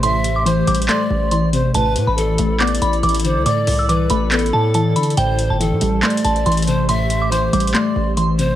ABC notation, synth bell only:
X:1
M:4/4
L:1/16
Q:1/4=140
K:Am
V:1 name="Synth bell"
c'3 d' c'2 d'2 c'4 c'2 z2 | a3 b4- b d'2 b2 d'4 | d'3 e' d'2 b4 a2 a2 b2 | g3 a4- a c'2 a2 c'4 |
c'3 d' c'2 d'2 c'4 c'2 z2 |]